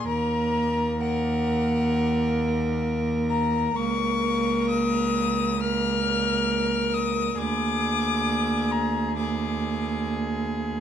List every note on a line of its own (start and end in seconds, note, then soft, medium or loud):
0.07 3.72 D#2 medium
0.07 0.99 A#3 medium
0.07 0.99 A#4 medium
0.07 1.03 A#5 loud
1.01 3.72 A#3 loud
1.01 3.72 A#4 medium
1.01 2.84 F#5 loud
3.29 3.77 A#5 loud
3.74 7.35 C#2 loud
3.74 5.57 A#3 loud
3.74 5.56 A#4 medium
3.74 4.69 C#6 loud
4.70 5.62 D#6 loud
5.60 7.35 A#3 medium
5.60 7.35 A#4 loud
5.60 6.96 F6 loud
6.94 7.40 D#6 loud
7.38 10.80 D2 medium
7.38 9.14 A#3 loud
7.38 9.14 G#4 loud
7.38 8.73 D6 loud
8.72 9.17 A#5 loud
9.18 10.80 A#3 medium
9.18 10.80 G#4 medium
9.18 10.09 D6 medium